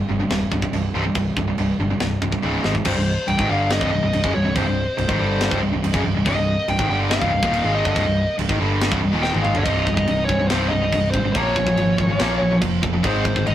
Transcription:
0.09 G1 C2 G2
0.19 C2 G2
0.30 D#1 C2 G2, snare, china
0.51 C1 C2 G2, kick
0.62 C2 G2, kick
0.73 C1 C2 G2, china
0.94 C1 C2 G2 C3
1.05 C2 G2
1.15 C1 C2 G2, kick, china
1.37 C1 C2 G2, kick
1.48 C2 G2
1.58 C1 C2 G2, china
1.79 G1 C2 G2
1.91 C2 G2
2.00 C1 C2 G2, snare, china
2.22 C1 C2 G2, kick
2.32 C2 G2, kick
2.42 C#1 C#2 G#2 C#3, high tom
2.63 G#1 G#2 D#3 G#3, snare
2.74 G#2 D#3, kick
2.85 C1 C2 G2 C3 G3 C4 C5 D#5, kick, crash
2.96 C1 C2 G2
3.27 C1 C2 G2 G5, crash
3.37 G#1 G#2 D#3, kick
3.48 G1 G2 D3 G3 F5
3.70 D#5, snare, crash
3.81 C1 C2 G2, kick
3.91 C1 C2 G2 D#5
4.02 C1 C2 G2
4.13 C1 C2 G2, crash
4.24 F#1 F#2 C#3, kick
4.34 C1 C2 G2 C#5
4.45 C1 C2 G2
4.55 C1 C2 G2 C5, kick, crash
4.66 C1 C2 G2
4.98 C1 C2 G2 C5, crash
5.08 G#1 G#2 D#3, kick
5.19 G1 G2 D3 G3
5.41 snare, crash
5.51 C1 C2 G2, kick
5.62 C1 C2 G2
5.72 C1 C2 G2
5.83 C1 C2 G2, crash
5.93 F#1 F#2 C#3, kick
6.04 C1 C2 G2
6.14 C1 C2 G2
6.25 C1 C2 G2 A#3 D#5, kick, crash
6.35 C1 C2 G2
6.68 C1 C2 G2 G5, crash
6.79 G#1 G#2 D#3, kick
6.89 G1 G2 D3 G3 G5
7.11 F5, snare, crash
7.21 C1 C2 G2, kick
7.32 C1 C2 G2
7.43 D#1 D#2 A#2 D#3, kick
7.54 crash
7.64 G#1 G#2 D#3 G#3
7.75 D#5
7.85 G1 G2 D3, kick
7.96 C1 C2 G2, kick, crash
8.06 C1 C2 G2
8.38 C1 C2 G2, crash
8.49 G#1 G#2 D#3, kick
8.59 G1 G2 D3 G3
8.81 snare, crash
8.91 C1 C2 G2, kick
9.02 C1 C2 G2
9.12 D#1 D#2 A#2 D#3
9.22 G4 G5, snare
9.33 G#1 G#2 D#3 G#3, high tom
9.42 F4 F5, mid tom
9.54 G1 G2 D3 C#4 C#5, floor tom
9.63 C1 C2 G2 C3 D#4 D#5, kick, crash
9.67 C3 G3 C4 D#4
9.86 C2 G2, kick
9.94 C2 G2 D#4 D#5, kick
10.07 C1 C2 G2, crash
10.25 G2 C#4 C#5
10.29 C2, kick
10.40 C2 G2
10.48 C1 C2 G2 C3 C4 C5, snare, crash
10.69 C1 C2 G2 D#4 D#5
10.82 C2 G2
10.92 C1 C2 G2, kick, crash
11.11 G#1 G2 C4 C5, kick
11.15 C2
11.25 C2 G2
11.33 A#1 A#2 F3 A#3 C#4 C#5, kick, crash
11.37 F4 C#5
11.56 A#2 F3, kick
11.67 A#2 F3, kick
11.77 G#1 A#2 F3, crash
11.98 G#1 A#2 F3, kick
12.09 A#2 F3
12.19 A#1 A#2 F3 A#3, snare, crash
12.41 A#1 A#2 F3
12.50 A#2 F3
12.61 F1 A#2 F3, kick, crash
12.82 F1 A#2 F3, kick
12.93 A#2 F3
13.03 G#1 G#2 D#3 G#3 C4 D#4 A#4 C5, kick, crash
13.25 G#2 D#3, kick
13.36 G#2 D#3, kick
13.46 G#1 G#2 D#3 D#4 D#5, crash

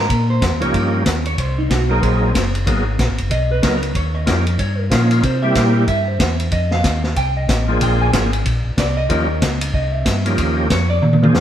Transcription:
Already playing: A#4
0.10 A#2, kick, ride
0.30 C5
0.42 F2, kick, snare, hi-hat pedal, ride
0.51 D#2
0.60 C#2 F3 A#3 C#4 D#4 G4 C#5, ride
0.73 G2, kick, ride
1.06 D#2, kick, snare, hi-hat pedal, ride
1.25 C#5, ride
1.38 C2 C5, kick, ride
1.58 D#4
1.70 B1 F#4, kick, snare, hi-hat pedal, ride
1.89 F#3 A#3 C4 D#4 G#4 A#4
2.02 A#1 C5, kick, ride
2.35 F#1, kick, snare, hi-hat pedal, ride
2.55 ride
2.66 G#1 F#3 A#3 B3 D#4 G#4, kick, ride
2.99 A#1, kick, snare, hi-hat pedal, ride
3.09 G#1
3.18 F#1, ride
3.31 B1 D#5, kick, ride
3.51 B4
3.62 C#2 F#3 A#3 B3 D#4 A#4, kick, snare, hi-hat pedal, ride
3.83 ride
3.95 D#2 C#5, kick, ride
4.15 D#5
4.26 F2 F3 A#3 C#4 D#4 G4, kick, snare, hi-hat pedal, ride
4.47 ride
4.59 G2 C#5, kick, ride
4.79 A#4
4.90 A#2 F3 A#3 C#4 D#4 F4, kick, snare, hi-hat pedal, ride
5.11 ride
5.23 C3 C5, kick, ride
5.42 G3 A#3 C4 E4 G4 E5
5.55 A#2, kick, snare, hi-hat pedal, ride
5.87 G2 E5, kick, ride
6.08 C5
6.20 E2, kick, snare, hi-hat pedal, ride
6.40 ride
6.51 F2 D#5, kick, ride
6.71 F5, snare
6.84 D#2, kick, snare, hi-hat pedal, ride
7.04 snare
7.16 C2 G5, kick, ride
7.37 D#5
7.49 A1, kick, snare, hi-hat pedal, ride
7.68 F3 A#3 C4 D4 G#4
7.81 A#1 G5, kick, ride
8.02 G#5
8.12 G#1 F3 A#3 C4 D4 G#4, kick, snare, hi-hat pedal, ride
8.33 ride
8.45 A#1, kick, ride
8.65 A#1
8.77 C2 D5, kick, snare, hi-hat pedal, ride
8.97 D#5
9.09 D#2 F3 A#3 C#4 D#4 G4, kick, ride
9.42 C#2, kick, snare, hi-hat pedal, ride
9.61 ride
9.74 C2 D#5, kick
9.93 E5
10.05 G2, kick, snare, hi-hat pedal, ride
10.25 F3 A#3 C#4 D#4 G4, ride
10.38 D#2, kick, ride
10.70 F2 C#5, kick, snare, hi-hat pedal, ride
10.90 D5
11.02 A#2, high tom
11.13 high tom
11.22 F3 A#3 C4 D4 G#4, high tom
11.34 F2, snare, hi-hat pedal

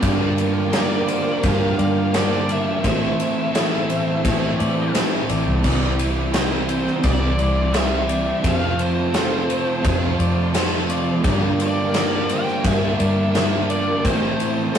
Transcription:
Already playing: F4
0.01 G2 D3 G3 A#3 D4 A#4 D5 G5, kick, ride
0.05 G3
0.36 D3 G3, ride
0.72 G2 D3 G3 A#3 D4 A#4, snare, ride
0.76 D5
1.07 G3 C5, ride
1.12 D3
1.43 G2 D3 G3 A#3 D4 F5, kick, ride
1.78 G2 D5 F5, ride
2.13 G2 D3 G3 A#3 D4 C5 D5, snare, ride
2.48 D3 G3 D5 E5, ride
2.83 A2 E3 A3 C4 E4 C5 E5 A5, kick, ride
3.18 E3 A3, ride
3.51 A2 E3 A3 C4 E4 A4, ride
3.55 E3 A3, snare
3.88 E3 A3 C5, ride
4.23 A2 E3 A3 C4 E4, kick, ride
4.59 A2 D5, ride
4.93 A2 E3 A3 C4 E4 C5, snare, ride
5.28 A1 E3 A3 D5, ride
5.47 C2
5.62 C2 C3 E3 G3 C4 E4 D5 C6, kick, crash
5.68 C4
5.99 G3 C4, ride
6.31 C3 E3 G3 C4 E4 A#4, snare, ride
6.36 G3 C4 C5
6.69 G3 C4 C5, ride
6.87 snare
7.02 C2 C3 E3 G3 C4 E4 D5, kick, ride
7.39 C2 D5, ride
7.72 C3 E3 G3 C4 E4 C5 E5, snare, ride
7.77 C4
8.08 G3 C4 D5, ride
8.42 F2 C3 F3 A3 C4 F4 C5 A5, kick, ride
8.46 F5
8.78 C3 F3 C5, ride
9.12 F2 C3 F3 A3 C4 F4 A4, snare, ride
9.17 F3
9.49 C3 F3 C5, ride
9.82 F2 F3 A3 C4 F4, kick, ride
10.19 F2 D5, ride
10.53 F2 C3 F3 A3 C4 F4 C5, snare, ride
10.57 F3
10.88 C3 F3 D5, ride
11.23 G2 D3 G3 A#3 D4 A#4 D5 G5, kick, ride
11.27 G3
11.59 D3 G3 D5, ride
11.94 G2 D3 G3 A#3 D4 A#4, snare, ride
12.29 D3 G3 C5 G5, ride
12.48 snare
12.63 G2 D3 G3 A#3 D4 E5, kick, ride
12.99 G2 D5, ride
13.33 G2 D3 G3 A#3 D4 C5, snare, ride
13.68 D3 G3 D5, ride
14.03 A2 E3 A3 C4 E4 C5 A5, kick, ride
14.07 A3
14.38 E3 A3, ride
14.72 A2 E3 A3 C4 E4 A4, ride

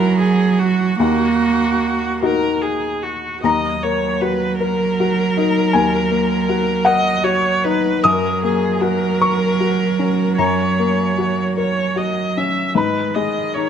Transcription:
Already playing: F#2 F#3 E4 F#4 A#4
0.18 G#4
0.59 F#4
0.99 D#2 A#3 F#4
2.23 D#4 F#4 A#4
2.61 G#4
3.02 F#4
3.43 D#2 F#3 D#5 A#5
3.83 A#3 C#5
4.21 F#4 B4
4.60 A#4
5.00 F#4
5.37 D#4
5.73 D#2 G#5
6.11 A#3
6.49 F#4
6.85 A#4 D#5 F#5
7.24 F#4 C#5
7.64 D#4 B4
8.03 F#2 F#3 A#4 D#6
8.43 A#3 G#4
8.81 F#4 A#4
9.21 A#4 C#6
9.60 F#4
9.99 C#4
10.38 F#2 C#5 A#5
10.79 A#3
11.18 F#4
11.57 A#4 C#5
11.96 F#4 D#5
12.37 C#4 E5
12.75 G#2 D#3 B4 B5
13.15 G#3 D#5
13.54 D#4 C#5

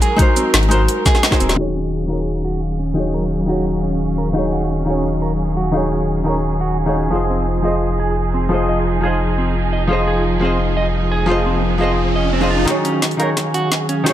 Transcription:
Already playing: F#3 G#3 D#4 F#4 A#4 C5
0.02 G#4, closed hi-hat, shaker
0.16 G#3 D#4 F#4, kick, closed hi-hat
0.20 A#4 C5
0.37 C4, closed hi-hat, shaker
0.54 G#1, snare, closed hi-hat
0.63 closed hi-hat
0.68 G#3 D#4 F#4 A#4 C5, closed hi-hat, shaker
0.74 C5
0.88 closed hi-hat
1.06 G#4, kick, snare, closed hi-hat, shaker
1.15 snare, shaker
1.23 snare, closed hi-hat
1.31 G#3 D#4 F#4 A#4 C5, kick, snare
1.40 D#1 C4, closed hi-hat, shaker
1.49 snare
1.55 D#1 D#3 F#3 C#4 D#4 F#4 G#4 F5
1.59 G#4 C#5
1.75 C#4
2.07 D#3 D#4 F#4 A#4 F5
2.11 G#4 C#5
2.44 F#4
2.79 C#4
2.94 D#3 D#4 F#4
2.98 G#4 C#5
3.14 A#4
3.46 D#3 D#4 F#4 F5
3.50 G#4 C#5
3.83 C#4
4.18 A#4
4.33 D#3 D#4 F#4 F5
4.37 G#4 C#5
4.53 F#4
4.85 D#3 C#4 D#4 F#4 F5
4.89 G#4 C#5
5.22 A#4
5.57 F#4
5.71 D#3 D#4 F#4 F5
5.76 G#4 C#5
5.91 C#4
6.23 D#3 D#4 F#4 A#4
6.28 G#4 C#5
6.61 F#4
6.86 D#3 D#4 F4 F#4 G#4 C#5
6.95 C#4
7.10 F1 F3 D#4 F4 G#4 C5
7.15 D#5
7.30 C4
7.62 F3 F4 G#4 C5 D#5
7.67 D#5
8.00 G#4
8.34 C4
8.49 F3 F4 G#4 C5
8.54 D#5
8.69 D#5
9.01 F3 F4 G#4 C5
9.06 D#5
9.38 C4
9.73 D#5
9.87 F3 F4 G#4 C5, riser
9.93 D#5
10.07 G#4
10.40 F3 C4 F4 G#4 C5
10.45 D#5
10.77 D#5
11.12 G#4
11.26 F3 F4 G#4 C5
11.31 D#5
11.46 C4
11.78 F3 F4 G#4 C5 D#5
11.83 D#5
12.16 D#5
12.33 C4
12.41 F3 F4 G#4 C5 D#5
12.50 F4
12.65 D#1 D#3 F#3 C#4 D#4 F#4 G#4 F5, kick, snare, closed hi-hat
12.69 G#4 C#5
12.85 C#4, closed hi-hat
13.02 kick, snare, closed hi-hat
13.11 closed hi-hat
13.17 D#3 D#4 F#4 A#4 F5, closed hi-hat
13.21 G#4 C#5
13.37 kick, snare, closed hi-hat
13.54 F#4, closed hi-hat
13.72 kick, snare, closed hi-hat
13.89 C#4, closed hi-hat
14.04 D#3 D#4 F#4, kick, snare, closed hi-hat
14.08 G#4 C#5

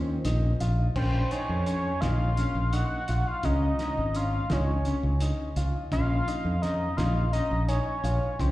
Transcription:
Already playing: A#3 C4 C#4 F4 A#4 C5 G5
0.25 A#1 D#4, closed hi-hat
0.60 A#1 F4, closed hi-hat
0.96 A#1 A#3 C#4 F4 A#4 C5 G5, kick, crash
1.31 D#4 C#5 G#5, closed hi-hat
1.49 F2
1.66 C#4 C#5 G#5, closed hi-hat
2.01 A#1 A#3 C#4 D#4 F4 A#4 F5 C6, snare, closed hi-hat
2.37 C#4, closed hi-hat
2.55 A#1
2.73 D#4 F#5 C#6, closed hi-hat
3.08 A#1 F4, closed hi-hat
3.27 F5 C6
3.43 C#2 G#3 C#4 F4 G#4 D#5 A#5, kick, closed hi-hat
3.79 D#4, snare, closed hi-hat
3.97 G#1
4.15 C#4 F5 C6, closed hi-hat
4.50 C#2 G#3 C#4 D#4 F4 G#4 C#5 G#5, snare, closed hi-hat
4.85 C#4, closed hi-hat
5.03 C#2
5.20 D#4, closed hi-hat
5.56 C#2 F4, closed hi-hat
5.92 A#1 F3 A#3 C#4 F4 F5 C6, kick, closed hi-hat
6.28 D#4, closed hi-hat
6.45 F2
6.62 C#4 D#5 A#5, snare, closed hi-hat
6.97 A#1 F3 A#3 C#4 D#4 F4 F5 C6, snare, closed hi-hat
7.33 C#4 D#5 A#5, closed hi-hat
7.51 A#1
7.68 D#4 C#5 G#5, closed hi-hat
8.04 A#1 F4, closed hi-hat
8.39 C#2 F3 G#3 C#4 F4 C5 G5, kick, closed hi-hat

